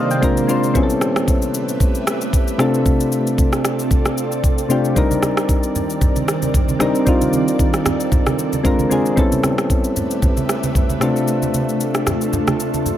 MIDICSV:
0, 0, Header, 1, 4, 480
1, 0, Start_track
1, 0, Tempo, 526316
1, 687, Time_signature, 4, 2, 24, 8
1, 11833, End_track
2, 0, Start_track
2, 0, Title_t, "Ambient pad"
2, 0, Program_c, 0, 92
2, 0, Note_on_c, 0, 48, 80
2, 0, Note_on_c, 0, 51, 72
2, 0, Note_on_c, 0, 58, 70
2, 0, Note_on_c, 0, 72, 87
2, 0, Note_on_c, 0, 74, 72
2, 173, Note_off_c, 0, 48, 0
2, 173, Note_off_c, 0, 51, 0
2, 192, Note_off_c, 0, 72, 0
2, 650, Note_off_c, 0, 58, 0
2, 650, Note_off_c, 0, 74, 0
2, 688, Note_on_c, 0, 57, 74
2, 688, Note_on_c, 0, 71, 74
2, 688, Note_on_c, 0, 76, 90
2, 689, Note_on_c, 0, 67, 76
2, 2350, Note_off_c, 0, 57, 0
2, 2350, Note_off_c, 0, 71, 0
2, 2351, Note_off_c, 0, 67, 0
2, 2351, Note_off_c, 0, 76, 0
2, 2368, Note_on_c, 0, 60, 73
2, 2368, Note_on_c, 0, 65, 74
2, 2368, Note_on_c, 0, 69, 73
2, 2368, Note_on_c, 0, 74, 87
2, 4505, Note_off_c, 0, 74, 0
2, 4506, Note_off_c, 0, 60, 0
2, 4506, Note_off_c, 0, 65, 0
2, 4506, Note_off_c, 0, 69, 0
2, 4527, Note_on_c, 0, 51, 72
2, 4527, Note_on_c, 0, 60, 70
2, 4527, Note_on_c, 0, 70, 70
2, 4527, Note_on_c, 0, 74, 88
2, 6427, Note_off_c, 0, 70, 0
2, 6447, Note_on_c, 0, 69, 74
2, 7853, Note_off_c, 0, 51, 0
2, 7853, Note_off_c, 0, 60, 0
2, 7853, Note_off_c, 0, 74, 0
2, 7872, Note_off_c, 0, 69, 0
2, 8365, Note_on_c, 0, 67, 74
2, 8366, Note_on_c, 0, 57, 73
2, 8366, Note_on_c, 0, 71, 75
2, 8366, Note_on_c, 0, 76, 86
2, 10029, Note_off_c, 0, 67, 0
2, 10030, Note_off_c, 0, 71, 0
2, 10030, Note_off_c, 0, 76, 0
2, 10047, Note_on_c, 0, 62, 71
2, 10047, Note_on_c, 0, 65, 73
2, 10047, Note_on_c, 0, 69, 88
2, 11833, Note_off_c, 0, 57, 0
2, 11833, Note_off_c, 0, 62, 0
2, 11833, Note_off_c, 0, 65, 0
2, 11833, Note_off_c, 0, 69, 0
2, 11833, End_track
3, 0, Start_track
3, 0, Title_t, "Synth keys"
3, 0, Program_c, 1, 88
3, 0, Control_c, 1, 64, 127
3, 0, Note_on_c, 1, 55, 85
3, 0, Note_on_c, 1, 60, 82
3, 0, Note_on_c, 1, 62, 80
3, 0, Note_on_c, 1, 63, 78
3, 0, Note_on_c, 1, 69, 93
3, 0, Note_on_c, 1, 70, 95
3, 0, Note_on_c, 1, 72, 70
3, 0, Note_on_c, 1, 75, 72
3, 0, Note_on_c, 1, 77, 73
3, 92, Note_off_c, 1, 77, 0
3, 100, Note_on_c, 1, 79, 66
3, 194, Note_on_c, 1, 56, 92
3, 200, Note_off_c, 1, 60, 0
3, 200, Note_on_c, 1, 60, 84
3, 207, Note_off_c, 1, 62, 0
3, 207, Note_on_c, 1, 62, 82
3, 213, Note_on_c, 1, 65, 83
3, 217, Control_c, 1, 64, 0
3, 220, Note_off_c, 1, 70, 0
3, 220, Note_on_c, 1, 70, 104
3, 221, Note_off_c, 1, 69, 0
3, 225, Note_off_c, 1, 55, 0
3, 225, Note_off_c, 1, 72, 0
3, 225, Note_off_c, 1, 75, 0
3, 226, Note_off_c, 1, 63, 0
3, 327, Note_off_c, 1, 79, 0
3, 365, Control_c, 1, 64, 127
3, 397, Note_off_c, 1, 56, 0
3, 400, Note_off_c, 1, 60, 0
3, 403, Note_off_c, 1, 62, 0
3, 407, Note_off_c, 1, 65, 0
3, 410, Note_off_c, 1, 70, 0
3, 434, Note_on_c, 1, 56, 85
3, 440, Note_on_c, 1, 60, 78
3, 446, Note_on_c, 1, 62, 80
3, 453, Note_on_c, 1, 65, 83
3, 460, Note_on_c, 1, 72, 93
3, 637, Note_off_c, 1, 56, 0
3, 640, Note_off_c, 1, 60, 0
3, 643, Note_off_c, 1, 62, 0
3, 646, Note_off_c, 1, 65, 0
3, 650, Note_off_c, 1, 72, 0
3, 673, Note_on_c, 1, 60, 87
3, 678, Note_on_c, 1, 55, 78
3, 683, Note_on_c, 1, 59, 84
3, 689, Note_on_c, 1, 61, 80
3, 694, Note_on_c, 1, 64, 79
3, 699, Control_c, 1, 64, 0
3, 699, Note_on_c, 1, 68, 78
3, 756, Note_off_c, 1, 68, 0
3, 757, Note_on_c, 1, 69, 94
3, 856, Control_c, 1, 64, 127
3, 1453, Note_off_c, 1, 60, 0
3, 1455, Note_off_c, 1, 55, 0
3, 1458, Note_off_c, 1, 59, 0
3, 1460, Note_off_c, 1, 61, 0
3, 1463, Note_off_c, 1, 64, 0
3, 1494, Note_off_c, 1, 69, 0
3, 2354, Note_on_c, 1, 48, 93
3, 2359, Note_on_c, 1, 57, 85
3, 2364, Note_on_c, 1, 60, 87
3, 2370, Note_on_c, 1, 62, 83
3, 2375, Note_on_c, 1, 65, 80
3, 2378, Control_c, 1, 64, 0
3, 2380, Note_on_c, 1, 69, 100
3, 2543, Control_c, 1, 64, 127
3, 3133, Note_off_c, 1, 48, 0
3, 3136, Note_off_c, 1, 57, 0
3, 3138, Note_off_c, 1, 60, 0
3, 3141, Note_off_c, 1, 62, 0
3, 3143, Note_off_c, 1, 65, 0
3, 3146, Note_off_c, 1, 69, 0
3, 4274, Note_on_c, 1, 48, 86
3, 4279, Note_on_c, 1, 57, 79
3, 4284, Note_on_c, 1, 60, 78
3, 4290, Note_on_c, 1, 62, 79
3, 4294, Note_on_c, 1, 65, 79
3, 4300, Note_on_c, 1, 67, 96
3, 4477, Note_off_c, 1, 48, 0
3, 4480, Note_off_c, 1, 57, 0
3, 4482, Note_off_c, 1, 60, 0
3, 4485, Note_off_c, 1, 62, 0
3, 4487, Note_off_c, 1, 65, 0
3, 4490, Note_off_c, 1, 67, 0
3, 4514, Note_on_c, 1, 55, 88
3, 4521, Note_on_c, 1, 60, 78
3, 4528, Note_on_c, 1, 62, 77
3, 4534, Note_on_c, 1, 63, 75
3, 4539, Control_c, 1, 64, 0
3, 4541, Note_on_c, 1, 70, 97
3, 4700, Control_c, 1, 64, 127
3, 5293, Note_off_c, 1, 55, 0
3, 5297, Note_off_c, 1, 60, 0
3, 5300, Note_off_c, 1, 62, 0
3, 5303, Note_off_c, 1, 63, 0
3, 5306, Note_off_c, 1, 70, 0
3, 6193, Note_on_c, 1, 55, 82
3, 6200, Note_on_c, 1, 60, 81
3, 6206, Note_on_c, 1, 62, 77
3, 6213, Note_on_c, 1, 63, 80
3, 6219, Note_on_c, 1, 70, 96
3, 6397, Note_off_c, 1, 55, 0
3, 6400, Note_off_c, 1, 60, 0
3, 6403, Note_off_c, 1, 62, 0
3, 6407, Note_off_c, 1, 63, 0
3, 6409, Note_off_c, 1, 70, 0
3, 6434, Note_on_c, 1, 55, 83
3, 6441, Note_on_c, 1, 60, 81
3, 6447, Note_on_c, 1, 62, 80
3, 6453, Note_on_c, 1, 63, 79
3, 6460, Note_on_c, 1, 65, 96
3, 7213, Note_off_c, 1, 55, 0
3, 7216, Note_off_c, 1, 60, 0
3, 7219, Note_off_c, 1, 62, 0
3, 7223, Note_off_c, 1, 63, 0
3, 7226, Note_off_c, 1, 65, 0
3, 7874, Note_on_c, 1, 56, 95
3, 7880, Note_on_c, 1, 60, 82
3, 7887, Note_on_c, 1, 62, 84
3, 7894, Note_on_c, 1, 65, 85
3, 7897, Control_c, 1, 64, 0
3, 7900, Note_on_c, 1, 70, 100
3, 8049, Control_c, 1, 64, 127
3, 8077, Note_off_c, 1, 56, 0
3, 8080, Note_off_c, 1, 60, 0
3, 8084, Note_off_c, 1, 62, 0
3, 8087, Note_off_c, 1, 65, 0
3, 8090, Note_off_c, 1, 70, 0
3, 8113, Note_on_c, 1, 56, 86
3, 8120, Note_on_c, 1, 60, 81
3, 8127, Note_on_c, 1, 62, 78
3, 8133, Note_on_c, 1, 65, 75
3, 8140, Note_on_c, 1, 68, 95
3, 8317, Note_off_c, 1, 56, 0
3, 8320, Note_off_c, 1, 60, 0
3, 8323, Note_off_c, 1, 62, 0
3, 8327, Note_off_c, 1, 65, 0
3, 8330, Note_off_c, 1, 68, 0
3, 8352, Note_on_c, 1, 60, 88
3, 8358, Note_on_c, 1, 55, 81
3, 8363, Note_on_c, 1, 59, 77
3, 8368, Note_on_c, 1, 61, 80
3, 8374, Note_on_c, 1, 64, 84
3, 8377, Control_c, 1, 64, 0
3, 8379, Note_on_c, 1, 69, 99
3, 8562, Control_c, 1, 64, 127
3, 9132, Note_off_c, 1, 60, 0
3, 9135, Note_off_c, 1, 55, 0
3, 9138, Note_off_c, 1, 59, 0
3, 9140, Note_off_c, 1, 61, 0
3, 9143, Note_off_c, 1, 64, 0
3, 9146, Note_off_c, 1, 69, 0
3, 10034, Note_on_c, 1, 48, 86
3, 10039, Note_on_c, 1, 57, 82
3, 10044, Note_on_c, 1, 60, 81
3, 10049, Note_on_c, 1, 62, 87
3, 10055, Note_on_c, 1, 65, 82
3, 10060, Control_c, 1, 64, 0
3, 10060, Note_on_c, 1, 69, 98
3, 10235, Control_c, 1, 64, 127
3, 10813, Note_off_c, 1, 48, 0
3, 10815, Note_off_c, 1, 57, 0
3, 10818, Note_off_c, 1, 60, 0
3, 10821, Note_off_c, 1, 62, 0
3, 10823, Note_off_c, 1, 65, 0
3, 10826, Note_off_c, 1, 69, 0
3, 11833, End_track
4, 0, Start_track
4, 0, Title_t, "Drums"
4, 97, Note_on_c, 9, 82, 57
4, 188, Note_off_c, 9, 82, 0
4, 206, Note_on_c, 9, 36, 96
4, 209, Note_on_c, 9, 82, 79
4, 297, Note_off_c, 9, 36, 0
4, 300, Note_off_c, 9, 82, 0
4, 338, Note_on_c, 9, 82, 48
4, 429, Note_off_c, 9, 82, 0
4, 447, Note_on_c, 9, 82, 101
4, 539, Note_off_c, 9, 82, 0
4, 579, Note_on_c, 9, 82, 49
4, 670, Note_off_c, 9, 82, 0
4, 686, Note_on_c, 9, 36, 109
4, 686, Note_on_c, 9, 82, 84
4, 777, Note_off_c, 9, 36, 0
4, 777, Note_off_c, 9, 82, 0
4, 819, Note_on_c, 9, 82, 64
4, 910, Note_off_c, 9, 82, 0
4, 924, Note_on_c, 9, 37, 93
4, 926, Note_on_c, 9, 82, 83
4, 1016, Note_off_c, 9, 37, 0
4, 1017, Note_off_c, 9, 82, 0
4, 1059, Note_on_c, 9, 37, 99
4, 1061, Note_on_c, 9, 82, 50
4, 1150, Note_off_c, 9, 37, 0
4, 1152, Note_off_c, 9, 82, 0
4, 1165, Note_on_c, 9, 36, 89
4, 1167, Note_on_c, 9, 82, 75
4, 1256, Note_off_c, 9, 36, 0
4, 1258, Note_off_c, 9, 82, 0
4, 1296, Note_on_c, 9, 82, 60
4, 1387, Note_off_c, 9, 82, 0
4, 1407, Note_on_c, 9, 82, 92
4, 1498, Note_off_c, 9, 82, 0
4, 1538, Note_on_c, 9, 82, 63
4, 1629, Note_off_c, 9, 82, 0
4, 1645, Note_on_c, 9, 36, 111
4, 1646, Note_on_c, 9, 82, 81
4, 1736, Note_off_c, 9, 36, 0
4, 1737, Note_off_c, 9, 82, 0
4, 1777, Note_on_c, 9, 82, 54
4, 1869, Note_off_c, 9, 82, 0
4, 1889, Note_on_c, 9, 37, 96
4, 1890, Note_on_c, 9, 82, 84
4, 1981, Note_off_c, 9, 37, 0
4, 1981, Note_off_c, 9, 82, 0
4, 2018, Note_on_c, 9, 82, 55
4, 2109, Note_off_c, 9, 82, 0
4, 2126, Note_on_c, 9, 36, 98
4, 2130, Note_on_c, 9, 82, 80
4, 2218, Note_off_c, 9, 36, 0
4, 2221, Note_off_c, 9, 82, 0
4, 2258, Note_on_c, 9, 82, 52
4, 2350, Note_off_c, 9, 82, 0
4, 2363, Note_on_c, 9, 37, 100
4, 2368, Note_on_c, 9, 82, 97
4, 2455, Note_off_c, 9, 37, 0
4, 2459, Note_off_c, 9, 82, 0
4, 2500, Note_on_c, 9, 82, 52
4, 2591, Note_off_c, 9, 82, 0
4, 2606, Note_on_c, 9, 36, 110
4, 2606, Note_on_c, 9, 82, 87
4, 2697, Note_off_c, 9, 36, 0
4, 2698, Note_off_c, 9, 82, 0
4, 2739, Note_on_c, 9, 82, 61
4, 2830, Note_off_c, 9, 82, 0
4, 2846, Note_on_c, 9, 82, 81
4, 2937, Note_off_c, 9, 82, 0
4, 2981, Note_on_c, 9, 82, 49
4, 3073, Note_off_c, 9, 82, 0
4, 3085, Note_on_c, 9, 36, 93
4, 3087, Note_on_c, 9, 82, 75
4, 3176, Note_off_c, 9, 36, 0
4, 3178, Note_off_c, 9, 82, 0
4, 3216, Note_on_c, 9, 37, 88
4, 3216, Note_on_c, 9, 82, 59
4, 3307, Note_off_c, 9, 82, 0
4, 3308, Note_off_c, 9, 37, 0
4, 3325, Note_on_c, 9, 37, 99
4, 3327, Note_on_c, 9, 82, 94
4, 3416, Note_off_c, 9, 37, 0
4, 3418, Note_off_c, 9, 82, 0
4, 3458, Note_on_c, 9, 82, 61
4, 3549, Note_off_c, 9, 82, 0
4, 3565, Note_on_c, 9, 36, 115
4, 3566, Note_on_c, 9, 82, 81
4, 3656, Note_off_c, 9, 36, 0
4, 3657, Note_off_c, 9, 82, 0
4, 3697, Note_on_c, 9, 82, 52
4, 3699, Note_on_c, 9, 37, 90
4, 3789, Note_off_c, 9, 82, 0
4, 3790, Note_off_c, 9, 37, 0
4, 3810, Note_on_c, 9, 82, 81
4, 3901, Note_off_c, 9, 82, 0
4, 3938, Note_on_c, 9, 82, 56
4, 4029, Note_off_c, 9, 82, 0
4, 4046, Note_on_c, 9, 36, 97
4, 4049, Note_on_c, 9, 82, 79
4, 4138, Note_off_c, 9, 36, 0
4, 4141, Note_off_c, 9, 82, 0
4, 4179, Note_on_c, 9, 82, 52
4, 4270, Note_off_c, 9, 82, 0
4, 4289, Note_on_c, 9, 82, 95
4, 4380, Note_off_c, 9, 82, 0
4, 4420, Note_on_c, 9, 82, 51
4, 4511, Note_off_c, 9, 82, 0
4, 4527, Note_on_c, 9, 36, 105
4, 4527, Note_on_c, 9, 82, 87
4, 4618, Note_off_c, 9, 36, 0
4, 4618, Note_off_c, 9, 82, 0
4, 4659, Note_on_c, 9, 63, 76
4, 4660, Note_on_c, 9, 82, 65
4, 4751, Note_off_c, 9, 63, 0
4, 4751, Note_off_c, 9, 82, 0
4, 4766, Note_on_c, 9, 37, 92
4, 4767, Note_on_c, 9, 63, 56
4, 4767, Note_on_c, 9, 82, 84
4, 4857, Note_off_c, 9, 37, 0
4, 4858, Note_off_c, 9, 63, 0
4, 4858, Note_off_c, 9, 82, 0
4, 4900, Note_on_c, 9, 37, 101
4, 4902, Note_on_c, 9, 82, 50
4, 4991, Note_off_c, 9, 37, 0
4, 4993, Note_off_c, 9, 82, 0
4, 5006, Note_on_c, 9, 36, 89
4, 5008, Note_on_c, 9, 82, 79
4, 5097, Note_off_c, 9, 36, 0
4, 5099, Note_off_c, 9, 82, 0
4, 5137, Note_on_c, 9, 82, 58
4, 5228, Note_off_c, 9, 82, 0
4, 5248, Note_on_c, 9, 82, 88
4, 5249, Note_on_c, 9, 64, 68
4, 5339, Note_off_c, 9, 82, 0
4, 5340, Note_off_c, 9, 64, 0
4, 5379, Note_on_c, 9, 82, 61
4, 5470, Note_off_c, 9, 82, 0
4, 5485, Note_on_c, 9, 36, 116
4, 5486, Note_on_c, 9, 64, 75
4, 5486, Note_on_c, 9, 82, 79
4, 5576, Note_off_c, 9, 36, 0
4, 5577, Note_off_c, 9, 64, 0
4, 5577, Note_off_c, 9, 82, 0
4, 5617, Note_on_c, 9, 82, 51
4, 5618, Note_on_c, 9, 63, 78
4, 5708, Note_off_c, 9, 82, 0
4, 5709, Note_off_c, 9, 63, 0
4, 5730, Note_on_c, 9, 37, 92
4, 5730, Note_on_c, 9, 82, 86
4, 5821, Note_off_c, 9, 37, 0
4, 5821, Note_off_c, 9, 82, 0
4, 5858, Note_on_c, 9, 82, 56
4, 5859, Note_on_c, 9, 63, 70
4, 5949, Note_off_c, 9, 82, 0
4, 5950, Note_off_c, 9, 63, 0
4, 5966, Note_on_c, 9, 36, 95
4, 5967, Note_on_c, 9, 64, 65
4, 5969, Note_on_c, 9, 82, 80
4, 6057, Note_off_c, 9, 36, 0
4, 6058, Note_off_c, 9, 64, 0
4, 6060, Note_off_c, 9, 82, 0
4, 6097, Note_on_c, 9, 63, 77
4, 6098, Note_on_c, 9, 82, 53
4, 6188, Note_off_c, 9, 63, 0
4, 6189, Note_off_c, 9, 82, 0
4, 6202, Note_on_c, 9, 37, 98
4, 6207, Note_on_c, 9, 82, 99
4, 6208, Note_on_c, 9, 63, 70
4, 6293, Note_off_c, 9, 37, 0
4, 6298, Note_off_c, 9, 82, 0
4, 6300, Note_off_c, 9, 63, 0
4, 6338, Note_on_c, 9, 82, 51
4, 6430, Note_off_c, 9, 82, 0
4, 6446, Note_on_c, 9, 36, 106
4, 6446, Note_on_c, 9, 82, 84
4, 6537, Note_off_c, 9, 36, 0
4, 6537, Note_off_c, 9, 82, 0
4, 6579, Note_on_c, 9, 63, 73
4, 6579, Note_on_c, 9, 82, 61
4, 6670, Note_off_c, 9, 63, 0
4, 6670, Note_off_c, 9, 82, 0
4, 6686, Note_on_c, 9, 82, 80
4, 6687, Note_on_c, 9, 63, 53
4, 6777, Note_off_c, 9, 82, 0
4, 6778, Note_off_c, 9, 63, 0
4, 6821, Note_on_c, 9, 82, 48
4, 6912, Note_off_c, 9, 82, 0
4, 6925, Note_on_c, 9, 36, 88
4, 6927, Note_on_c, 9, 82, 75
4, 7016, Note_off_c, 9, 36, 0
4, 7018, Note_off_c, 9, 82, 0
4, 7056, Note_on_c, 9, 82, 58
4, 7057, Note_on_c, 9, 37, 84
4, 7147, Note_off_c, 9, 82, 0
4, 7148, Note_off_c, 9, 37, 0
4, 7165, Note_on_c, 9, 37, 97
4, 7167, Note_on_c, 9, 82, 96
4, 7168, Note_on_c, 9, 64, 70
4, 7257, Note_off_c, 9, 37, 0
4, 7258, Note_off_c, 9, 82, 0
4, 7260, Note_off_c, 9, 64, 0
4, 7298, Note_on_c, 9, 82, 60
4, 7389, Note_off_c, 9, 82, 0
4, 7404, Note_on_c, 9, 36, 113
4, 7405, Note_on_c, 9, 82, 81
4, 7406, Note_on_c, 9, 64, 76
4, 7495, Note_off_c, 9, 36, 0
4, 7496, Note_off_c, 9, 82, 0
4, 7497, Note_off_c, 9, 64, 0
4, 7537, Note_on_c, 9, 82, 52
4, 7538, Note_on_c, 9, 37, 95
4, 7538, Note_on_c, 9, 63, 83
4, 7628, Note_off_c, 9, 82, 0
4, 7630, Note_off_c, 9, 37, 0
4, 7630, Note_off_c, 9, 63, 0
4, 7650, Note_on_c, 9, 82, 82
4, 7741, Note_off_c, 9, 82, 0
4, 7778, Note_on_c, 9, 82, 59
4, 7779, Note_on_c, 9, 63, 75
4, 7869, Note_off_c, 9, 82, 0
4, 7870, Note_off_c, 9, 63, 0
4, 7886, Note_on_c, 9, 36, 101
4, 7888, Note_on_c, 9, 64, 66
4, 7889, Note_on_c, 9, 82, 81
4, 7977, Note_off_c, 9, 36, 0
4, 7979, Note_off_c, 9, 64, 0
4, 7980, Note_off_c, 9, 82, 0
4, 8017, Note_on_c, 9, 63, 75
4, 8018, Note_on_c, 9, 82, 50
4, 8108, Note_off_c, 9, 63, 0
4, 8109, Note_off_c, 9, 82, 0
4, 8128, Note_on_c, 9, 82, 101
4, 8129, Note_on_c, 9, 63, 72
4, 8219, Note_off_c, 9, 82, 0
4, 8220, Note_off_c, 9, 63, 0
4, 8259, Note_on_c, 9, 82, 51
4, 8351, Note_off_c, 9, 82, 0
4, 8366, Note_on_c, 9, 36, 110
4, 8367, Note_on_c, 9, 82, 85
4, 8457, Note_off_c, 9, 36, 0
4, 8458, Note_off_c, 9, 82, 0
4, 8500, Note_on_c, 9, 63, 74
4, 8500, Note_on_c, 9, 82, 61
4, 8591, Note_off_c, 9, 63, 0
4, 8591, Note_off_c, 9, 82, 0
4, 8605, Note_on_c, 9, 37, 95
4, 8606, Note_on_c, 9, 82, 81
4, 8607, Note_on_c, 9, 63, 54
4, 8696, Note_off_c, 9, 37, 0
4, 8697, Note_off_c, 9, 82, 0
4, 8699, Note_off_c, 9, 63, 0
4, 8739, Note_on_c, 9, 37, 101
4, 8742, Note_on_c, 9, 82, 49
4, 8831, Note_off_c, 9, 37, 0
4, 8833, Note_off_c, 9, 82, 0
4, 8845, Note_on_c, 9, 36, 89
4, 8847, Note_on_c, 9, 82, 75
4, 8936, Note_off_c, 9, 36, 0
4, 8938, Note_off_c, 9, 82, 0
4, 8976, Note_on_c, 9, 82, 60
4, 9067, Note_off_c, 9, 82, 0
4, 9086, Note_on_c, 9, 82, 91
4, 9089, Note_on_c, 9, 64, 74
4, 9178, Note_off_c, 9, 82, 0
4, 9180, Note_off_c, 9, 64, 0
4, 9218, Note_on_c, 9, 82, 60
4, 9309, Note_off_c, 9, 82, 0
4, 9324, Note_on_c, 9, 36, 110
4, 9325, Note_on_c, 9, 82, 81
4, 9326, Note_on_c, 9, 64, 74
4, 9415, Note_off_c, 9, 36, 0
4, 9416, Note_off_c, 9, 82, 0
4, 9417, Note_off_c, 9, 64, 0
4, 9457, Note_on_c, 9, 82, 52
4, 9458, Note_on_c, 9, 63, 83
4, 9548, Note_off_c, 9, 82, 0
4, 9549, Note_off_c, 9, 63, 0
4, 9569, Note_on_c, 9, 37, 93
4, 9569, Note_on_c, 9, 82, 88
4, 9660, Note_off_c, 9, 37, 0
4, 9660, Note_off_c, 9, 82, 0
4, 9697, Note_on_c, 9, 82, 57
4, 9699, Note_on_c, 9, 63, 72
4, 9788, Note_off_c, 9, 82, 0
4, 9790, Note_off_c, 9, 63, 0
4, 9806, Note_on_c, 9, 36, 93
4, 9807, Note_on_c, 9, 64, 63
4, 9809, Note_on_c, 9, 82, 80
4, 9897, Note_off_c, 9, 36, 0
4, 9898, Note_off_c, 9, 64, 0
4, 9900, Note_off_c, 9, 82, 0
4, 9936, Note_on_c, 9, 63, 73
4, 9937, Note_on_c, 9, 82, 51
4, 10027, Note_off_c, 9, 63, 0
4, 10028, Note_off_c, 9, 82, 0
4, 10042, Note_on_c, 9, 37, 97
4, 10047, Note_on_c, 9, 63, 68
4, 10047, Note_on_c, 9, 82, 97
4, 10133, Note_off_c, 9, 37, 0
4, 10138, Note_off_c, 9, 63, 0
4, 10138, Note_off_c, 9, 82, 0
4, 10179, Note_on_c, 9, 82, 50
4, 10270, Note_off_c, 9, 82, 0
4, 10286, Note_on_c, 9, 82, 87
4, 10377, Note_off_c, 9, 82, 0
4, 10418, Note_on_c, 9, 82, 64
4, 10419, Note_on_c, 9, 63, 72
4, 10509, Note_off_c, 9, 82, 0
4, 10510, Note_off_c, 9, 63, 0
4, 10525, Note_on_c, 9, 82, 83
4, 10526, Note_on_c, 9, 63, 56
4, 10616, Note_off_c, 9, 82, 0
4, 10617, Note_off_c, 9, 63, 0
4, 10660, Note_on_c, 9, 82, 50
4, 10751, Note_off_c, 9, 82, 0
4, 10766, Note_on_c, 9, 82, 77
4, 10857, Note_off_c, 9, 82, 0
4, 10895, Note_on_c, 9, 82, 57
4, 10896, Note_on_c, 9, 37, 84
4, 10986, Note_off_c, 9, 82, 0
4, 10987, Note_off_c, 9, 37, 0
4, 11005, Note_on_c, 9, 37, 92
4, 11007, Note_on_c, 9, 82, 93
4, 11008, Note_on_c, 9, 64, 70
4, 11096, Note_off_c, 9, 37, 0
4, 11098, Note_off_c, 9, 82, 0
4, 11099, Note_off_c, 9, 64, 0
4, 11137, Note_on_c, 9, 82, 59
4, 11229, Note_off_c, 9, 82, 0
4, 11245, Note_on_c, 9, 64, 79
4, 11245, Note_on_c, 9, 82, 81
4, 11336, Note_off_c, 9, 64, 0
4, 11336, Note_off_c, 9, 82, 0
4, 11377, Note_on_c, 9, 82, 51
4, 11378, Note_on_c, 9, 37, 91
4, 11378, Note_on_c, 9, 63, 85
4, 11468, Note_off_c, 9, 82, 0
4, 11469, Note_off_c, 9, 37, 0
4, 11469, Note_off_c, 9, 63, 0
4, 11490, Note_on_c, 9, 82, 85
4, 11581, Note_off_c, 9, 82, 0
4, 11618, Note_on_c, 9, 63, 72
4, 11618, Note_on_c, 9, 82, 57
4, 11709, Note_off_c, 9, 63, 0
4, 11709, Note_off_c, 9, 82, 0
4, 11726, Note_on_c, 9, 64, 64
4, 11729, Note_on_c, 9, 82, 78
4, 11817, Note_off_c, 9, 64, 0
4, 11820, Note_off_c, 9, 82, 0
4, 11833, End_track
0, 0, End_of_file